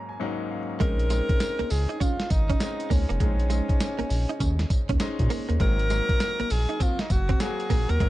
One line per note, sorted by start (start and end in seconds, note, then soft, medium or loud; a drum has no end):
0.00 0.20 G#2 medium
0.00 0.20 F#3 medium
0.00 0.20 A#3 medium
0.00 0.21 C#4 medium
0.00 0.51 C#4 loud
0.00 0.21 D#4 medium
0.00 0.82 A#5 medium
0.09 0.19 G#5 medium
0.20 0.58 G#2 loud
0.20 0.59 F#3 medium
0.20 0.59 A#3 medium
0.20 0.59 C#4 medium
0.20 0.59 D#4 loud
0.20 0.48 F#5 medium
0.51 0.79 F5 medium
0.80 1.21 A#1 loud
0.80 0.95 G#3 medium
0.80 1.02 G#3 medium
0.80 1.02 C4 medium
0.80 1.02 C#4 medium
0.80 1.03 D#4 medium
0.80 1.73 A#4 loud
0.80 kick loud
0.80 closed hi-hat medium
0.99 closed hi-hat medium
1.10 1.26 G#3 medium
1.10 1.88 G#3 medium
1.10 1.88 C4 medium
1.10 1.88 C#4 medium
1.10 1.88 D#4 medium
1.10 closed hi-hat medium
1.10 tambourine medium
1.29 muted clean electric guitar stroke soft
1.29 kick loud
1.29 closed hi-hat medium
1.40 snare loud
1.40 closed hi-hat medium
1.40 tambourine medium
1.59 1.64 C#2 medium
1.59 1.68 A#3 medium
1.59 closed hi-hat soft
1.70 1.87 C#2 medium
1.70 2.03 G#4 loud
1.70 muted clean electric guitar stroke soft
1.70 open hi-hat medium
1.70 tambourine medium
1.89 1.98 D#4 medium
1.89 closed hi-hat soft
2.00 2.16 C#4 medium
2.00 2.33 F4 loud
2.00 kick loud
2.00 closed hi-hat medium
2.00 tambourine medium
2.20 snare medium
2.20 closed hi-hat medium
2.30 2.56 G#1 medium
2.30 2.93 D#4 loud
2.30 muted clean electric guitar stroke soft
2.30 kick loud
2.30 closed hi-hat medium
2.30 tambourine medium
2.50 2.58 C#4 medium
2.50 kick medium
2.50 closed hi-hat medium
2.60 2.99 G#3 medium
2.60 2.99 C4 medium
2.60 2.99 C#4 medium
2.60 3.00 D#4 medium
2.60 muted clean electric guitar stroke soft
2.60 snare loud
2.60 closed hi-hat medium
2.60 tambourine medium
2.80 closed hi-hat medium
2.90 3.07 C#2 loud
2.90 3.06 A#3 medium
2.90 5.31 C#4 loud
2.90 kick loud
2.90 open hi-hat medium
2.90 tambourine medium
3.09 3.19 F1 medium
3.09 3.18 A#3 medium
3.09 closed hi-hat medium
3.20 3.61 A#1 loud
3.20 3.42 G#3 medium
3.20 3.36 G#3 medium
3.20 3.42 C4 medium
3.20 3.42 C#4 medium
3.20 3.42 D#4 medium
3.20 kick loud
3.20 closed hi-hat medium
3.40 closed hi-hat medium
3.50 3.65 G#3 medium
3.50 4.28 G#3 medium
3.50 4.28 C#4 medium
3.50 4.28 D#4 medium
3.50 4.28 C5 medium
3.50 closed hi-hat medium
3.50 tambourine medium
3.69 muted clean electric guitar stroke medium
3.69 kick loud
3.69 closed hi-hat medium
3.80 snare loud
3.80 closed hi-hat medium
3.80 tambourine medium
3.99 4.04 A#1 soft
3.99 4.08 A#3 medium
3.99 closed hi-hat medium
4.10 4.26 A#1 medium
4.10 muted clean electric guitar stroke soft
4.10 open hi-hat medium
4.10 tambourine medium
4.29 4.38 D#4 medium
4.29 closed hi-hat medium
4.40 4.66 D#2 loud
4.40 4.56 C#4 medium
4.40 kick loud
4.40 closed hi-hat medium
4.40 tambourine medium
4.59 snare medium
4.59 closed hi-hat medium
4.70 muted clean electric guitar stroke soft
4.70 kick loud
4.70 closed hi-hat medium
4.70 tambourine medium
4.89 4.99 D#2 medium
4.89 4.98 C#4 medium
4.89 kick loud
4.89 closed hi-hat medium
5.00 5.38 G#3 loud
5.00 5.39 C#4 loud
5.00 5.39 D#4 loud
5.00 5.39 C5 medium
5.00 muted clean electric guitar stroke soft
5.00 snare loud
5.00 closed hi-hat medium
5.00 tambourine medium
5.19 5.29 A#2 loud
5.19 kick loud
5.19 closed hi-hat medium
5.30 5.46 A#3 medium
5.30 open hi-hat medium
5.30 tambourine medium
5.49 5.59 D#2 medium
5.49 5.58 A#3 medium
5.49 closed hi-hat medium
5.60 6.01 G#1 loud
5.60 5.81 F#3 medium
5.60 5.75 G#3 medium
5.60 5.81 A#3 medium
5.60 5.82 C4 medium
5.60 5.82 D#4 medium
5.60 6.53 A#4 loud
5.60 kick loud
5.60 closed hi-hat medium
5.79 closed hi-hat medium
5.90 6.67 F#3 medium
5.90 6.06 G#3 medium
5.90 6.67 A#3 medium
5.90 6.67 C4 medium
5.90 6.68 D#4 medium
5.90 closed hi-hat medium
5.90 tambourine medium
6.09 muted clean electric guitar stroke soft
6.09 kick loud
6.09 closed hi-hat medium
6.20 snare loud
6.20 closed hi-hat medium
6.20 tambourine medium
6.40 6.44 A#1 medium
6.40 6.48 A#3 medium
6.40 closed hi-hat soft
6.50 6.67 A#1 loud
6.50 6.84 G#4 loud
6.50 muted clean electric guitar stroke soft
6.50 open hi-hat medium
6.50 tambourine medium
6.69 6.78 D#4 medium
6.69 closed hi-hat soft
6.80 6.96 C4 medium
6.80 7.03 F4 loud
6.80 kick loud
6.80 closed hi-hat medium
6.80 tambourine medium
6.99 7.13 D#4 medium
6.99 snare medium
6.99 closed hi-hat medium
7.10 7.35 F#1 loud
7.10 7.43 F#4 loud
7.10 muted clean electric guitar stroke soft
7.10 kick loud
7.10 closed hi-hat medium
7.10 tambourine medium
7.29 7.38 C4 medium
7.29 kick medium
7.29 closed hi-hat medium
7.40 7.79 F#3 medium
7.40 7.79 A#3 medium
7.40 7.79 C4 medium
7.40 7.80 F#4 medium
7.40 7.92 G#4 loud
7.40 muted clean electric guitar stroke soft
7.40 snare loud
7.40 closed hi-hat medium
7.40 tambourine medium
7.60 closed hi-hat medium
7.70 7.86 A#1 medium
7.70 7.85 A#3 medium
7.70 kick loud
7.70 open hi-hat medium
7.70 tambourine medium
7.89 7.99 D#2 loud
7.89 7.98 A#3 medium
7.89 8.09 A#4 loud
7.89 closed hi-hat medium
8.00 8.09 G#1 medium
8.00 8.09 F#3 medium
8.00 8.09 G#3 medium
8.00 8.09 A#3 medium
8.00 8.09 C4 medium
8.00 8.09 D#4 medium
8.00 kick loud
8.00 closed hi-hat medium